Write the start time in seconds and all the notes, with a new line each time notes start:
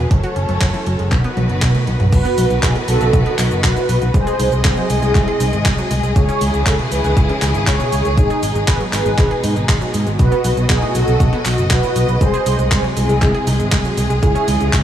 0.11 F#1 F#3 A3 C#4 A4 C#5, kick, closed hi-hat
0.23 F#4, closed hi-hat
0.36 F#1 C#4, closed hi-hat
0.49 F#1 F#3, closed hi-hat
0.61 F#1 F#3, kick, clap, closed hi-hat
0.74 E3, closed hi-hat
0.86 F#1 F#3, closed hi-hat
0.99 F#1 G#3, closed hi-hat
1.12 B1 B2 D#3 F#3 B3 F#4 B4, kick, clap, closed hi-hat
1.24 B3, closed hi-hat
1.37 B1 F#3, closed hi-hat, high tom
1.50 F#1 B2, closed hi-hat
1.62 B1 B2, kick, clap, closed hi-hat, mid tom
1.75 A2, closed hi-hat, mid tom
1.87 B1 B2, closed hi-hat
2.00 B1 C#3, closed hi-hat, mid tom
2.12 B1 B2 D#3 F#3 B3 F#4 B4, kick, closed hi-hat, crash, cabasa
2.25 B3, closed hi-hat, cabasa
2.38 B1 F#3, open hi-hat, cabasa
2.50 B1 B2, closed hi-hat, cabasa
2.63 B1 B2 D#4 G#4, kick, clap, closed hi-hat, cabasa
2.76 A2, closed hi-hat
2.88 B1 B2 F#4 A4, open hi-hat, cabasa
3.01 B1 C#3, closed hi-hat, cabasa
3.13 B1 B2, kick, closed hi-hat, cabasa
3.26 B3, closed hi-hat
3.39 B1 F#3, clap, open hi-hat, cabasa
3.51 F#1 B2, closed hi-hat, cabasa
3.64 B1 B2 F#4 B4, kick, clap, closed hi-hat, cabasa
3.76 A2, closed hi-hat, cabasa
3.89 B1 B2, open hi-hat, cabasa
4.02 B1 C#3, closed hi-hat, cabasa
4.14 C2 C3 G#3 G#4 C5 D#5, kick, closed hi-hat, cabasa
4.27 G#4, closed hi-hat, cabasa
4.39 C2 D#4, open hi-hat, cabasa
4.52 C2 G#3, closed hi-hat, cabasa
4.65 C2 G#3 G#4 C5, kick, clap, closed hi-hat, cabasa
4.77 F#3, closed hi-hat
4.90 C2 G#3 E4 G#4, open hi-hat, cabasa
5.02 C2 G#3, closed hi-hat, cabasa
5.15 C2 G#3, kick, clap, closed hi-hat, cabasa
5.28 G#4, closed hi-hat
5.40 C2 D#4, open hi-hat, cabasa
5.53 G#1 G#3, closed hi-hat, cabasa
5.65 C2 G#3, kick, clap, closed hi-hat, cabasa
5.78 F#3, closed hi-hat, cabasa
5.91 C2 G#3, open hi-hat, cabasa
6.03 C2 G#3, closed hi-hat, cabasa
6.16 C#2 C#3 E3 E4 G#4 C#5, kick, closed hi-hat, cabasa
6.29 C#4, closed hi-hat, cabasa
6.41 C#2 G#3, open hi-hat, cabasa
6.54 C#2 C#3, closed hi-hat, cabasa
6.66 C#2 C#3 E4 A4, kick, clap, closed hi-hat, cabasa
6.79 B2, closed hi-hat
6.91 C#2 C#3 G#4 B4, open hi-hat, cabasa
7.04 C#2 D#3, closed hi-hat, cabasa
7.17 C#2 C#3, kick, closed hi-hat, cabasa
7.29 C#4, closed hi-hat
7.42 C#2 G#3, clap, open hi-hat, cabasa
7.55 G#1 C#3, closed hi-hat, cabasa
7.67 C#2 C#3 G#4 C#5, kick, clap, closed hi-hat, cabasa
7.80 B2, closed hi-hat, cabasa
7.92 C#2 C#3, open hi-hat, cabasa
8.05 C#2 D#3, closed hi-hat, cabasa
8.17 G#1 B2 G#3 D#4 G#4, kick, closed hi-hat, cabasa
8.30 G#4, closed hi-hat, cabasa
8.43 G#1 D#4, open hi-hat, cabasa
8.55 G#1 G#3, closed hi-hat, cabasa
8.68 G#1 G#3 G#4 B4, kick, clap, closed hi-hat, cabasa
8.80 F#3, closed hi-hat
8.93 G#1 G#3 G#4 B4, clap, open hi-hat, cabasa
9.06 G#1 G#3, closed hi-hat, cabasa
9.18 G#1 G#3, kick, clap, closed hi-hat, cabasa
9.31 G#4, closed hi-hat
9.44 G#2 D#4, open hi-hat, cabasa
9.56 G#1 G#3, closed hi-hat, cabasa
9.69 G#1 G#3, kick, clap, closed hi-hat, cabasa
9.81 F#3, closed hi-hat, cabasa
9.94 G#2 G#3, open hi-hat, cabasa
10.07 G#1 G#3, closed hi-hat, cabasa
10.19 B1 B2 F#3 F#4 B4 D#5, kick, closed hi-hat, cabasa
10.32 B3, closed hi-hat, cabasa
10.44 B1 F#3, open hi-hat, cabasa
10.57 B1 B2, closed hi-hat, cabasa
10.70 B1 B2 D#4 G#4, kick, clap, cabasa
10.82 A2, closed hi-hat
10.95 B1 B2 F#4 A4, open hi-hat, cabasa
11.07 B1 C#3, closed hi-hat, cabasa
11.20 B1 B2, kick, closed hi-hat, cabasa
11.33 B3, closed hi-hat
11.45 B1 F#3, clap, open hi-hat, cabasa
11.58 F#1 B2, closed hi-hat, cabasa
11.71 B1 B2 F#4 B4, kick, clap, cabasa
11.83 A2, closed hi-hat, cabasa
11.96 B1 B2, open hi-hat, cabasa
12.08 B1 C#3, closed hi-hat, cabasa
12.21 C2 C3 G#3 G#4 C5, kick, closed hi-hat, cabasa
12.34 G#4, closed hi-hat, cabasa
12.46 C2 D#4, open hi-hat, cabasa
12.59 C2 G#3, closed hi-hat, cabasa
12.71 C2 G#3 G#4 C5, kick, clap, closed hi-hat, cabasa
12.84 F#3, closed hi-hat
12.96 C2 G#3 E4 G#4, open hi-hat, cabasa
13.09 C2 G#3, closed hi-hat, cabasa
13.22 C2 G#3, kick, clap, closed hi-hat, cabasa
13.34 G#4, closed hi-hat
13.47 C2 D#4, open hi-hat, cabasa
13.60 G#1 G#3, closed hi-hat, cabasa
13.72 C2 G#3, kick, clap, closed hi-hat, cabasa
13.85 F#3, closed hi-hat, cabasa
13.97 C2 G#3, open hi-hat, cabasa
14.10 C2 G#3, closed hi-hat, cabasa
14.23 C#2 C#3 E3 C#4 E4 G#4, kick, closed hi-hat, cabasa
14.35 C#4, closed hi-hat, cabasa
14.48 C#2 G#3, open hi-hat, cabasa
14.60 C#2 C#3, closed hi-hat, cabasa
14.73 C#2 C#3 C#4 E4, kick, clap, closed hi-hat, cabasa